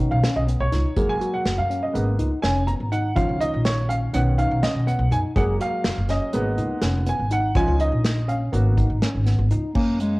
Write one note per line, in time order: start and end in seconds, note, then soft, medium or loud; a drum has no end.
0.00 0.44 D#3 soft
0.00 0.44 B3 soft
0.00 0.45 C#4 medium
0.00 0.19 D#4 medium
0.11 0.22 B1 medium
0.11 0.36 F5 medium
0.23 0.43 C#4 medium
0.23 snare medium
0.23 closed hi-hat medium
0.36 0.58 B1 medium
0.36 0.42 D#5 medium
0.47 0.67 B3 medium
0.47 closed hi-hat soft
0.60 0.71 B1 medium
0.60 1.11 C#5 medium
0.72 0.83 C#2 medium
0.72 0.92 D#4 medium
0.72 snare soft
0.72 closed hi-hat medium
0.96 1.18 F#1 medium
0.96 1.90 F#3 soft
0.96 1.90 G#3 soft
0.96 1.91 A#3 medium
0.96 1.16 G#4 medium
0.96 kick medium
0.96 closed hi-hat medium
1.09 1.34 G#5 medium
1.21 1.60 F#4 medium
1.21 closed hi-hat soft
1.34 1.59 F#5 medium
1.46 1.56 F#1 medium
1.46 snare loud
1.46 closed hi-hat medium
1.58 1.80 F#2 medium
1.58 1.83 F5 medium
1.70 2.09 C#4 medium
1.70 closed hi-hat soft
1.83 2.05 D#5 medium
1.93 2.16 G#1 medium
1.93 2.26 G#3 medium
1.93 2.27 A#3 soft
1.93 2.27 B3 medium
1.93 closed hi-hat medium
2.19 2.30 C#2 medium
2.19 2.38 D#4 medium
2.19 closed hi-hat medium
2.42 2.76 F1 medium
2.42 2.63 C#4 medium
2.42 2.68 G#5 medium
2.42 snare loud
2.42 closed hi-hat medium
2.67 2.87 B3 medium
2.67 2.73 A#5 medium
2.67 closed hi-hat medium
2.80 3.12 G#1 medium
2.92 3.12 D#4 medium
2.92 3.15 F#5 medium
2.92 closed hi-hat medium
3.15 3.27 C#2 medium
3.15 4.09 D#3 medium
3.15 4.10 F3 soft
3.15 4.10 C#4 medium
3.15 3.36 F4 medium
3.15 3.41 F5 medium
3.15 kick loud
3.15 closed hi-hat medium
3.29 3.50 C#2 medium
3.41 3.80 D#4 medium
3.41 3.66 D#5 medium
3.41 closed hi-hat medium
3.54 4.07 A#1 medium
3.65 3.90 C#5 medium
3.65 snare loud
3.65 closed hi-hat medium
3.89 4.28 C#4 medium
3.89 3.94 F5 medium
3.89 closed hi-hat medium
4.13 4.46 B1 medium
4.13 4.83 D#3 medium
4.13 4.83 B3 medium
4.13 4.83 C#4 medium
4.13 4.19 F#5 medium
4.13 closed hi-hat medium
4.38 4.58 D#4 medium
4.38 4.63 F5 medium
4.38 closed hi-hat medium
4.51 4.62 B1 medium
4.63 4.82 C#4 medium
4.63 4.88 D#5 medium
4.63 snare loud
4.63 closed hi-hat medium
4.75 4.96 B1 medium
4.87 5.06 B3 medium
4.87 5.12 F#5 medium
4.87 closed hi-hat medium
4.99 5.10 B1 medium
5.11 5.22 F#2 medium
5.11 5.31 D#4 medium
5.11 5.17 G#5 medium
5.11 closed hi-hat medium
5.36 5.58 F#1 medium
5.36 6.29 F#3 medium
5.36 6.30 G#3 medium
5.36 6.30 A#3 medium
5.36 5.55 G#4 medium
5.36 5.42 F#5 medium
5.36 kick loud
5.36 closed hi-hat medium
5.60 5.99 F#4 medium
5.60 6.11 F5 loud
5.60 closed hi-hat medium
5.84 5.95 F#1 medium
5.84 snare loud
5.84 closed hi-hat medium
5.98 6.19 F#1 medium
6.09 6.48 C#4 medium
6.09 6.79 D#5 medium
6.09 snare soft
6.09 closed hi-hat medium
6.33 6.55 G#1 medium
6.33 7.03 G#3 medium
6.33 7.03 A#3 medium
6.33 7.04 B3 medium
6.33 closed hi-hat medium
6.58 6.69 C#2 medium
6.58 6.77 D#4 medium
6.58 closed hi-hat medium
6.82 7.15 F1 loud
6.82 7.02 C#4 medium
6.82 snare loud
6.82 closed hi-hat medium
7.06 7.26 B3 medium
7.06 7.33 G#5 medium
7.06 closed hi-hat medium
7.20 7.52 G#1 medium
7.31 7.50 D#4 medium
7.31 7.57 F#5 medium
7.31 closed hi-hat medium
7.55 7.66 C#2 medium
7.55 7.88 F3 medium
7.55 7.88 C#4 medium
7.55 7.88 D#4 medium
7.55 7.75 F4 medium
7.55 7.81 G#5 loud
7.55 kick loud
7.55 closed hi-hat medium
7.68 7.89 C#2 medium
7.80 8.19 D#4 medium
7.80 8.30 D#5 medium
7.80 closed hi-hat medium
7.92 8.46 A#1 medium
8.05 snare loud
8.05 closed hi-hat medium
8.28 8.67 C#4 medium
8.28 8.34 F5 medium
8.28 closed hi-hat medium
8.52 8.85 G#1 loud
8.52 8.85 A#3 medium
8.52 8.85 B3 soft
8.52 8.86 F#4 medium
8.52 closed hi-hat medium
8.77 8.97 D#4 medium
8.77 kick medium
8.77 closed hi-hat medium
8.90 9.01 G#1 medium
9.02 9.22 C#4 medium
9.02 snare loud
9.02 closed hi-hat medium
9.15 9.36 G#1 medium
9.26 9.46 B3 medium
9.26 snare soft
9.26 closed hi-hat medium
9.39 9.49 G#1 loud
9.51 9.62 C#2 medium
9.51 9.70 D#4 medium
9.51 closed hi-hat medium
9.75 10.20 F#2 medium
9.75 9.98 A#3 medium
9.75 10.14 C#4 medium
9.75 kick loud
9.75 crash medium
10.00 10.20 G#3 medium
10.00 closed hi-hat medium